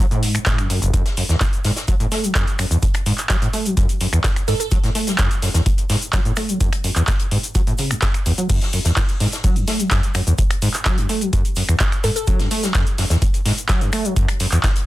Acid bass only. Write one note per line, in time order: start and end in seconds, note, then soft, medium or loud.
0.11 0.24 A2 loud
0.23 0.36 G#2 medium
0.35 0.39 A2 loud
0.46 0.60 A2 loud
0.58 0.68 F#2 medium
0.70 0.80 F#2 medium
0.82 0.92 F#1 loud
0.94 1.03 F#2 loud
1.17 1.24 F#2 medium
1.29 1.36 E2 loud
1.41 1.45 A2 medium
1.64 1.71 G#2 loud
1.88 1.95 F#3 loud
2.00 2.06 A2 loud
2.12 2.25 A3 medium
2.24 2.33 F#3 medium
2.35 2.45 F#2 loud
2.59 2.66 F#2 medium
2.71 2.77 E2 loud
2.83 2.86 A2 medium
3.06 3.13 G#2 loud
3.30 3.36 F#3 loud
3.42 3.48 A2 loud
3.53 3.67 A3 medium
3.65 3.75 F#3 medium
3.77 3.87 F#2 loud
4.01 4.07 F#2 medium
4.13 4.19 E2 loud
4.24 4.28 A2 medium
4.48 4.54 G#2 loud
4.71 4.78 F#3 loud
4.84 4.90 A2 loud
4.95 5.09 A3 medium
5.07 5.17 F#3 medium
5.19 5.29 F#2 loud
5.42 5.49 F#2 medium
5.54 5.61 E2 loud
5.66 5.70 A2 medium
5.90 5.96 G#2 loud
6.13 6.20 F#3 loud
6.25 6.32 A2 loud
6.37 6.50 A3 medium
6.49 6.58 F#3 medium
6.60 6.70 F#2 loud
6.84 6.91 F#2 medium
6.96 7.02 E2 loud
7.08 7.12 A2 medium
7.31 7.38 G#2 loud
7.55 7.62 F#3 loud
7.67 7.73 A2 loud
7.79 7.92 C#3 medium
7.91 7.94 F#2 medium
8.02 8.06 F#2 medium
8.26 8.32 E2 loud
8.38 8.47 F#3 medium
8.49 8.59 F#2 loud
8.73 8.80 F#2 medium
8.85 8.91 E2 loud
8.97 9.01 A2 medium
9.20 9.27 G#2 loud
9.44 9.57 F#3 loud
9.56 9.66 F#2 medium
9.68 9.81 A3 medium
9.80 9.89 F#3 medium
9.91 10.01 F#2 loud
10.15 10.21 F#2 medium
10.27 10.33 E2 loud
10.38 10.42 A2 medium
10.62 10.69 G#2 loud
10.86 10.99 F#3 loud
10.98 11.07 F#2 medium
11.09 11.23 A3 medium
11.21 11.31 F#3 medium
11.33 11.43 F#2 medium
11.57 11.63 F#2 medium
11.69 11.75 E2 loud
11.80 11.84 A2 medium
12.04 12.10 G#2 loud
12.27 12.41 F#3 loud
12.39 12.49 F#2 medium
12.51 12.65 A3 medium
12.63 12.73 F#3 medium
12.75 12.85 F#2 loud
12.98 13.05 F#2 medium
13.10 13.17 E2 loud
13.22 13.26 A2 medium
13.46 13.52 G#2 loud
13.69 13.83 F#3 loud
13.81 13.91 F#2 medium
13.93 14.06 A3 medium
14.05 14.14 F#3 medium
14.16 14.26 F#2 loud
14.40 14.47 F#2 medium
14.52 14.58 E2 loud
14.64 14.68 A2 medium